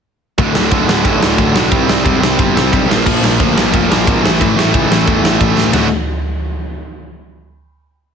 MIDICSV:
0, 0, Header, 1, 4, 480
1, 0, Start_track
1, 0, Tempo, 334635
1, 539, Time_signature, 4, 2, 24, 8
1, 11685, End_track
2, 0, Start_track
2, 0, Title_t, "Distorted electric guitar"
2, 0, Program_c, 0, 30
2, 547, Note_on_c, 0, 38, 90
2, 552, Note_on_c, 0, 45, 93
2, 562, Note_on_c, 0, 50, 101
2, 776, Note_off_c, 0, 50, 0
2, 789, Note_off_c, 0, 45, 0
2, 793, Note_on_c, 0, 50, 98
2, 795, Note_off_c, 0, 38, 0
2, 807, Note_on_c, 0, 45, 83
2, 812, Note_on_c, 0, 38, 72
2, 1006, Note_off_c, 0, 38, 0
2, 1012, Note_off_c, 0, 45, 0
2, 1023, Note_off_c, 0, 50, 0
2, 1023, Note_on_c, 0, 38, 98
2, 1029, Note_on_c, 0, 45, 97
2, 1040, Note_on_c, 0, 50, 109
2, 1252, Note_off_c, 0, 50, 0
2, 1263, Note_off_c, 0, 45, 0
2, 1269, Note_on_c, 0, 50, 83
2, 1274, Note_off_c, 0, 38, 0
2, 1280, Note_on_c, 0, 45, 84
2, 1291, Note_on_c, 0, 38, 86
2, 1480, Note_off_c, 0, 38, 0
2, 1491, Note_off_c, 0, 45, 0
2, 1497, Note_on_c, 0, 38, 95
2, 1498, Note_off_c, 0, 50, 0
2, 1509, Note_on_c, 0, 45, 87
2, 1515, Note_on_c, 0, 50, 114
2, 1727, Note_off_c, 0, 50, 0
2, 1734, Note_off_c, 0, 45, 0
2, 1743, Note_off_c, 0, 38, 0
2, 1744, Note_on_c, 0, 50, 98
2, 1752, Note_on_c, 0, 45, 81
2, 1761, Note_on_c, 0, 38, 88
2, 1956, Note_off_c, 0, 38, 0
2, 1961, Note_off_c, 0, 45, 0
2, 1973, Note_on_c, 0, 38, 88
2, 1974, Note_off_c, 0, 50, 0
2, 1979, Note_on_c, 0, 45, 97
2, 1991, Note_on_c, 0, 50, 100
2, 2188, Note_off_c, 0, 50, 0
2, 2205, Note_on_c, 0, 50, 107
2, 2208, Note_off_c, 0, 45, 0
2, 2214, Note_off_c, 0, 38, 0
2, 2225, Note_on_c, 0, 45, 96
2, 2231, Note_on_c, 0, 38, 75
2, 2439, Note_off_c, 0, 50, 0
2, 2443, Note_off_c, 0, 38, 0
2, 2448, Note_off_c, 0, 45, 0
2, 2449, Note_on_c, 0, 48, 92
2, 2454, Note_on_c, 0, 55, 103
2, 2462, Note_on_c, 0, 60, 99
2, 2658, Note_off_c, 0, 60, 0
2, 2669, Note_off_c, 0, 55, 0
2, 2675, Note_on_c, 0, 60, 90
2, 2679, Note_off_c, 0, 48, 0
2, 2686, Note_on_c, 0, 55, 82
2, 2696, Note_on_c, 0, 48, 70
2, 2902, Note_off_c, 0, 48, 0
2, 2908, Note_off_c, 0, 55, 0
2, 2918, Note_off_c, 0, 60, 0
2, 2919, Note_on_c, 0, 48, 86
2, 2925, Note_on_c, 0, 55, 106
2, 2935, Note_on_c, 0, 60, 113
2, 3142, Note_off_c, 0, 60, 0
2, 3152, Note_off_c, 0, 55, 0
2, 3159, Note_off_c, 0, 48, 0
2, 3160, Note_on_c, 0, 60, 109
2, 3169, Note_on_c, 0, 55, 100
2, 3176, Note_on_c, 0, 48, 78
2, 3392, Note_off_c, 0, 48, 0
2, 3402, Note_off_c, 0, 55, 0
2, 3409, Note_off_c, 0, 60, 0
2, 3409, Note_on_c, 0, 48, 94
2, 3419, Note_on_c, 0, 55, 105
2, 3426, Note_on_c, 0, 60, 103
2, 3637, Note_off_c, 0, 60, 0
2, 3651, Note_off_c, 0, 55, 0
2, 3654, Note_on_c, 0, 60, 101
2, 3657, Note_off_c, 0, 48, 0
2, 3669, Note_on_c, 0, 55, 94
2, 3675, Note_on_c, 0, 48, 70
2, 3876, Note_off_c, 0, 48, 0
2, 3890, Note_off_c, 0, 55, 0
2, 3893, Note_on_c, 0, 48, 102
2, 3896, Note_off_c, 0, 60, 0
2, 3907, Note_on_c, 0, 55, 105
2, 3913, Note_on_c, 0, 60, 94
2, 4125, Note_off_c, 0, 48, 0
2, 4132, Note_off_c, 0, 55, 0
2, 4135, Note_off_c, 0, 60, 0
2, 4140, Note_on_c, 0, 46, 103
2, 4150, Note_on_c, 0, 53, 106
2, 4160, Note_on_c, 0, 58, 119
2, 4378, Note_off_c, 0, 58, 0
2, 4386, Note_off_c, 0, 53, 0
2, 4387, Note_off_c, 0, 46, 0
2, 4395, Note_on_c, 0, 58, 105
2, 4403, Note_on_c, 0, 53, 101
2, 4405, Note_on_c, 0, 46, 87
2, 4596, Note_off_c, 0, 46, 0
2, 4602, Note_off_c, 0, 53, 0
2, 4613, Note_on_c, 0, 46, 79
2, 4614, Note_off_c, 0, 58, 0
2, 4619, Note_on_c, 0, 53, 97
2, 4632, Note_on_c, 0, 58, 93
2, 4831, Note_off_c, 0, 58, 0
2, 4846, Note_off_c, 0, 53, 0
2, 4848, Note_on_c, 0, 58, 113
2, 4857, Note_off_c, 0, 46, 0
2, 4863, Note_on_c, 0, 53, 103
2, 4874, Note_on_c, 0, 46, 84
2, 5076, Note_off_c, 0, 46, 0
2, 5079, Note_off_c, 0, 53, 0
2, 5085, Note_off_c, 0, 58, 0
2, 5093, Note_on_c, 0, 46, 93
2, 5096, Note_on_c, 0, 53, 94
2, 5103, Note_on_c, 0, 58, 114
2, 5314, Note_off_c, 0, 58, 0
2, 5325, Note_off_c, 0, 53, 0
2, 5332, Note_on_c, 0, 58, 98
2, 5338, Note_off_c, 0, 46, 0
2, 5342, Note_on_c, 0, 53, 101
2, 5355, Note_on_c, 0, 46, 94
2, 5575, Note_off_c, 0, 46, 0
2, 5581, Note_off_c, 0, 53, 0
2, 5589, Note_off_c, 0, 58, 0
2, 5592, Note_on_c, 0, 46, 90
2, 5598, Note_on_c, 0, 53, 91
2, 5606, Note_on_c, 0, 58, 97
2, 5812, Note_off_c, 0, 58, 0
2, 5819, Note_off_c, 0, 53, 0
2, 5829, Note_on_c, 0, 58, 107
2, 5830, Note_off_c, 0, 46, 0
2, 5836, Note_on_c, 0, 53, 106
2, 5847, Note_on_c, 0, 46, 84
2, 6044, Note_off_c, 0, 46, 0
2, 6049, Note_on_c, 0, 45, 107
2, 6055, Note_off_c, 0, 58, 0
2, 6058, Note_off_c, 0, 53, 0
2, 6064, Note_on_c, 0, 52, 117
2, 6069, Note_on_c, 0, 57, 107
2, 6292, Note_off_c, 0, 57, 0
2, 6301, Note_off_c, 0, 52, 0
2, 6307, Note_off_c, 0, 45, 0
2, 6310, Note_on_c, 0, 57, 104
2, 6318, Note_on_c, 0, 52, 101
2, 6325, Note_on_c, 0, 45, 90
2, 6530, Note_off_c, 0, 45, 0
2, 6540, Note_off_c, 0, 52, 0
2, 6545, Note_off_c, 0, 57, 0
2, 6547, Note_on_c, 0, 45, 77
2, 6558, Note_on_c, 0, 52, 93
2, 6563, Note_on_c, 0, 57, 89
2, 6764, Note_off_c, 0, 57, 0
2, 6777, Note_off_c, 0, 52, 0
2, 6782, Note_on_c, 0, 57, 107
2, 6787, Note_off_c, 0, 45, 0
2, 6794, Note_on_c, 0, 52, 106
2, 6804, Note_on_c, 0, 45, 84
2, 7001, Note_off_c, 0, 45, 0
2, 7017, Note_off_c, 0, 52, 0
2, 7019, Note_on_c, 0, 45, 78
2, 7022, Note_off_c, 0, 57, 0
2, 7034, Note_on_c, 0, 52, 85
2, 7039, Note_on_c, 0, 57, 103
2, 7233, Note_off_c, 0, 57, 0
2, 7243, Note_off_c, 0, 52, 0
2, 7250, Note_on_c, 0, 57, 103
2, 7256, Note_off_c, 0, 45, 0
2, 7260, Note_on_c, 0, 52, 106
2, 7273, Note_on_c, 0, 45, 91
2, 7472, Note_off_c, 0, 45, 0
2, 7486, Note_off_c, 0, 52, 0
2, 7490, Note_on_c, 0, 45, 84
2, 7495, Note_off_c, 0, 57, 0
2, 7503, Note_on_c, 0, 52, 100
2, 7512, Note_on_c, 0, 57, 95
2, 7712, Note_off_c, 0, 57, 0
2, 7724, Note_off_c, 0, 52, 0
2, 7729, Note_on_c, 0, 57, 116
2, 7731, Note_off_c, 0, 45, 0
2, 7741, Note_on_c, 0, 52, 97
2, 7748, Note_on_c, 0, 45, 80
2, 7960, Note_off_c, 0, 45, 0
2, 7971, Note_off_c, 0, 52, 0
2, 7976, Note_off_c, 0, 57, 0
2, 7977, Note_on_c, 0, 45, 84
2, 7988, Note_on_c, 0, 52, 87
2, 7994, Note_on_c, 0, 57, 102
2, 8202, Note_off_c, 0, 45, 0
2, 8207, Note_off_c, 0, 57, 0
2, 8209, Note_on_c, 0, 38, 96
2, 8214, Note_off_c, 0, 52, 0
2, 8216, Note_on_c, 0, 50, 105
2, 8219, Note_on_c, 0, 45, 103
2, 8225, Note_on_c, 0, 57, 93
2, 8227, Note_on_c, 0, 66, 96
2, 8411, Note_off_c, 0, 38, 0
2, 8415, Note_off_c, 0, 50, 0
2, 8417, Note_off_c, 0, 45, 0
2, 8419, Note_off_c, 0, 57, 0
2, 8421, Note_off_c, 0, 66, 0
2, 11685, End_track
3, 0, Start_track
3, 0, Title_t, "Picked electric bass"
3, 0, Program_c, 1, 34
3, 552, Note_on_c, 1, 26, 89
3, 767, Note_off_c, 1, 26, 0
3, 797, Note_on_c, 1, 26, 86
3, 1010, Note_off_c, 1, 26, 0
3, 1025, Note_on_c, 1, 30, 80
3, 1243, Note_off_c, 1, 30, 0
3, 1264, Note_on_c, 1, 26, 85
3, 1483, Note_off_c, 1, 26, 0
3, 1512, Note_on_c, 1, 33, 78
3, 1728, Note_off_c, 1, 33, 0
3, 1739, Note_on_c, 1, 26, 88
3, 1961, Note_off_c, 1, 26, 0
3, 1988, Note_on_c, 1, 26, 96
3, 2206, Note_off_c, 1, 26, 0
3, 2223, Note_on_c, 1, 35, 88
3, 2444, Note_off_c, 1, 35, 0
3, 2469, Note_on_c, 1, 36, 94
3, 2687, Note_off_c, 1, 36, 0
3, 2703, Note_on_c, 1, 36, 97
3, 2924, Note_off_c, 1, 36, 0
3, 2946, Note_on_c, 1, 28, 86
3, 3155, Note_off_c, 1, 28, 0
3, 3163, Note_on_c, 1, 36, 87
3, 3394, Note_off_c, 1, 36, 0
3, 3428, Note_on_c, 1, 31, 89
3, 3647, Note_off_c, 1, 31, 0
3, 3657, Note_on_c, 1, 36, 96
3, 3882, Note_off_c, 1, 36, 0
3, 3914, Note_on_c, 1, 35, 96
3, 4124, Note_off_c, 1, 35, 0
3, 4132, Note_on_c, 1, 34, 88
3, 4360, Note_off_c, 1, 34, 0
3, 4399, Note_on_c, 1, 34, 107
3, 4614, Note_off_c, 1, 34, 0
3, 4622, Note_on_c, 1, 34, 96
3, 4846, Note_off_c, 1, 34, 0
3, 4877, Note_on_c, 1, 38, 85
3, 5094, Note_off_c, 1, 38, 0
3, 5120, Note_on_c, 1, 34, 95
3, 5336, Note_off_c, 1, 34, 0
3, 5358, Note_on_c, 1, 29, 93
3, 5575, Note_off_c, 1, 29, 0
3, 5593, Note_on_c, 1, 34, 94
3, 5812, Note_off_c, 1, 34, 0
3, 5841, Note_on_c, 1, 32, 103
3, 6057, Note_off_c, 1, 32, 0
3, 6078, Note_on_c, 1, 33, 88
3, 6296, Note_off_c, 1, 33, 0
3, 6328, Note_on_c, 1, 33, 101
3, 6533, Note_off_c, 1, 33, 0
3, 6541, Note_on_c, 1, 33, 94
3, 6767, Note_off_c, 1, 33, 0
3, 6794, Note_on_c, 1, 37, 88
3, 7014, Note_off_c, 1, 37, 0
3, 7023, Note_on_c, 1, 33, 80
3, 7248, Note_off_c, 1, 33, 0
3, 7278, Note_on_c, 1, 28, 83
3, 7496, Note_off_c, 1, 28, 0
3, 7512, Note_on_c, 1, 33, 95
3, 7733, Note_off_c, 1, 33, 0
3, 7753, Note_on_c, 1, 33, 93
3, 7969, Note_off_c, 1, 33, 0
3, 7977, Note_on_c, 1, 33, 92
3, 8204, Note_off_c, 1, 33, 0
3, 8239, Note_on_c, 1, 26, 86
3, 8458, Note_off_c, 1, 26, 0
3, 11685, End_track
4, 0, Start_track
4, 0, Title_t, "Drums"
4, 546, Note_on_c, 9, 51, 75
4, 550, Note_on_c, 9, 36, 107
4, 690, Note_off_c, 9, 51, 0
4, 693, Note_off_c, 9, 36, 0
4, 792, Note_on_c, 9, 38, 107
4, 935, Note_off_c, 9, 38, 0
4, 1024, Note_on_c, 9, 51, 80
4, 1027, Note_on_c, 9, 36, 116
4, 1168, Note_off_c, 9, 51, 0
4, 1170, Note_off_c, 9, 36, 0
4, 1279, Note_on_c, 9, 38, 112
4, 1423, Note_off_c, 9, 38, 0
4, 1505, Note_on_c, 9, 36, 111
4, 1508, Note_on_c, 9, 51, 78
4, 1649, Note_off_c, 9, 36, 0
4, 1651, Note_off_c, 9, 51, 0
4, 1758, Note_on_c, 9, 38, 119
4, 1902, Note_off_c, 9, 38, 0
4, 1984, Note_on_c, 9, 51, 81
4, 1985, Note_on_c, 9, 36, 107
4, 2127, Note_off_c, 9, 51, 0
4, 2128, Note_off_c, 9, 36, 0
4, 2234, Note_on_c, 9, 38, 117
4, 2377, Note_off_c, 9, 38, 0
4, 2460, Note_on_c, 9, 51, 80
4, 2465, Note_on_c, 9, 36, 125
4, 2603, Note_off_c, 9, 51, 0
4, 2608, Note_off_c, 9, 36, 0
4, 2717, Note_on_c, 9, 38, 102
4, 2860, Note_off_c, 9, 38, 0
4, 2949, Note_on_c, 9, 36, 115
4, 2949, Note_on_c, 9, 51, 74
4, 3092, Note_off_c, 9, 36, 0
4, 3093, Note_off_c, 9, 51, 0
4, 3205, Note_on_c, 9, 38, 117
4, 3348, Note_off_c, 9, 38, 0
4, 3429, Note_on_c, 9, 36, 119
4, 3430, Note_on_c, 9, 51, 72
4, 3573, Note_off_c, 9, 36, 0
4, 3573, Note_off_c, 9, 51, 0
4, 3689, Note_on_c, 9, 38, 115
4, 3833, Note_off_c, 9, 38, 0
4, 3915, Note_on_c, 9, 36, 119
4, 3922, Note_on_c, 9, 51, 75
4, 4059, Note_off_c, 9, 36, 0
4, 4066, Note_off_c, 9, 51, 0
4, 4178, Note_on_c, 9, 38, 122
4, 4322, Note_off_c, 9, 38, 0
4, 4395, Note_on_c, 9, 36, 116
4, 4397, Note_on_c, 9, 49, 109
4, 4538, Note_off_c, 9, 36, 0
4, 4540, Note_off_c, 9, 49, 0
4, 4647, Note_on_c, 9, 38, 108
4, 4791, Note_off_c, 9, 38, 0
4, 4875, Note_on_c, 9, 51, 78
4, 4876, Note_on_c, 9, 36, 124
4, 5018, Note_off_c, 9, 51, 0
4, 5019, Note_off_c, 9, 36, 0
4, 5130, Note_on_c, 9, 38, 117
4, 5273, Note_off_c, 9, 38, 0
4, 5360, Note_on_c, 9, 36, 108
4, 5362, Note_on_c, 9, 51, 82
4, 5503, Note_off_c, 9, 36, 0
4, 5505, Note_off_c, 9, 51, 0
4, 5618, Note_on_c, 9, 38, 116
4, 5762, Note_off_c, 9, 38, 0
4, 5844, Note_on_c, 9, 36, 126
4, 5851, Note_on_c, 9, 51, 88
4, 5987, Note_off_c, 9, 36, 0
4, 5994, Note_off_c, 9, 51, 0
4, 6104, Note_on_c, 9, 38, 116
4, 6247, Note_off_c, 9, 38, 0
4, 6326, Note_on_c, 9, 36, 108
4, 6335, Note_on_c, 9, 51, 83
4, 6469, Note_off_c, 9, 36, 0
4, 6479, Note_off_c, 9, 51, 0
4, 6583, Note_on_c, 9, 38, 101
4, 6726, Note_off_c, 9, 38, 0
4, 6801, Note_on_c, 9, 36, 113
4, 6804, Note_on_c, 9, 51, 78
4, 6945, Note_off_c, 9, 36, 0
4, 6947, Note_off_c, 9, 51, 0
4, 7054, Note_on_c, 9, 38, 119
4, 7197, Note_off_c, 9, 38, 0
4, 7279, Note_on_c, 9, 51, 75
4, 7280, Note_on_c, 9, 36, 105
4, 7423, Note_off_c, 9, 36, 0
4, 7423, Note_off_c, 9, 51, 0
4, 7531, Note_on_c, 9, 38, 115
4, 7675, Note_off_c, 9, 38, 0
4, 7756, Note_on_c, 9, 36, 119
4, 7759, Note_on_c, 9, 51, 77
4, 7900, Note_off_c, 9, 36, 0
4, 7902, Note_off_c, 9, 51, 0
4, 8006, Note_on_c, 9, 38, 71
4, 8150, Note_off_c, 9, 38, 0
4, 8224, Note_on_c, 9, 43, 98
4, 8224, Note_on_c, 9, 53, 83
4, 8237, Note_on_c, 9, 38, 96
4, 8368, Note_off_c, 9, 43, 0
4, 8368, Note_off_c, 9, 53, 0
4, 8381, Note_off_c, 9, 38, 0
4, 11685, End_track
0, 0, End_of_file